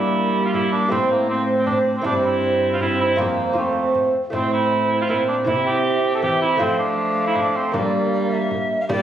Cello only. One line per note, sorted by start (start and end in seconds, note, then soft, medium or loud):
0.00 0.94 G3 medium
0.92 2.04 A2 medium
2.05 3.20 G2 medium
3.18 4.14 F2 medium
4.34 5.11 A2 medium
5.09 5.49 A#2 medium
5.47 6.24 C3 medium
6.23 6.60 E3 medium
6.61 7.76 F3 medium
7.74 8.70 G3 medium
8.90 9.02 G3 medium